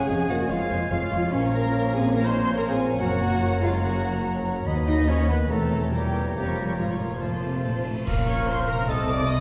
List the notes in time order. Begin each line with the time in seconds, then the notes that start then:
Already playing: F2 C#4 F4 G#4 C#5 F#5 G#5 C#6
0.08 F1 F2 F3 C#5 D#5 F5 G#5
0.19 C#6
0.29 F1 F2 A#3 F#4 C#5 F5 F#5
0.39 C#5
0.49 F1 F2 G#3 F4 C#5 F5 G#5
0.60 C#4
0.69 F1 F2 C5 C#5 F5
0.81 F4
0.90 F1 F2 G#3 F4 C#5 F5
1.01 C#6
1.10 F1 F2 C#5 F5
1.22 C#5
1.32 A#1 A#2 F3 C#4 A#4 C#5 F5
1.42 C#4 C#5 A#5
1.53 C#4 A#4 F5 A#5
1.63 C#5 A#5
1.73 A#4 F5
1.84 C#5 A#5
1.94 C4 G#4 A#4 F5 G#5
2.05 A#4 C#5 A#5
2.15 F3 C#4 A#4 F5 A#5
2.25 D#4 C5 C#5 A#5 C6
2.36 A#4 F5
2.47 C#5 A#5
2.57 C#4 A#4 F5 A#5
2.68 C4 G#4 C#5 G#5 A#5
2.78 A#4 F5
2.89 A#4 C#5 A#5
2.99 F#1 F#2 F#3 A#3 F#4 C#5 F#5 A#5
3.09 C#4 A#4 A#5
3.20 C#5 F#5
3.31 A#4 A#5
3.41 C#5 F#5
3.52 A#4 A#5
3.62 G#3 F4 C#5 F5 F#5
3.73 A#4 A#5
3.83 C#3 A#3 F#4 C#5 F#5
3.93 C#4 A#4 A#5
4.03 A#4 C#5 F#5
4.14 A#4 C#5 A#5
4.25 C#5 F#5
4.35 A#4 A#5
4.45 C#5 F#5
4.56 A#4 A#5
4.66 D#2 D#3 D#5 F#5 B5
4.76 B3 B4 D#5
4.87 F#3 D#4 B4 D#5 F#5
4.98 F#4 B4 D#5
5.08 F3 C#4 C#5 D#5 F#5
5.18 B4 D#5 B5
5.28 D#3 B3 B4 D#5 F#5
5.38 B4 D#5
5.49 E1 E2 C3 E3 A3 A4 A#4 C#5 A#5
5.60 A#3 C#5 G5
5.71 A#4 C#5 A#5
5.81 A#4 C#5 G5
5.92 A#2 G3 G4 A#4 G5 A#5
6.02 C#5 G5 C#6
6.14 A#4 G5 A#5
6.25 C#5 G5
6.35 F1 F2 A#2 F3 G3 G4 A#4 A#5
6.46 A#3 C#5 C#6
6.56 A#4 C#5 A#5
6.67 A#4 C#5 C#6
6.78 G#2 A#2 F3 F4 A#4 A#5
6.89 C#5 C#6
7.00 A#2 A#4 A#5
7.11 C#5 C#6
7.21 A2 F3 A4 C5 A5
7.32 C4 C5 C6
7.42 C3 A4 C5 A5
7.54 A4 C5 C6
7.63 A#2 A4 A5
7.74 C5 C6
7.85 A2 A4 A5
7.89 A#2
7.94 C#4 C5 C6
7.98 F4
8.03 A#4
8.07 A#1 A#2 A#3 C#4 F4 A#4 F6, concert bass drum, crash
8.27 C#5 C#6
8.47 C5 C6
8.67 C3 A#4 A#5
8.75 C4
8.79 D#4
8.84 A4
8.88 C2 C3 A3 C4 D#4 A4 D#5 A5 D#6
9.08 D5 D6
9.28 C4 A4 D#5 D#6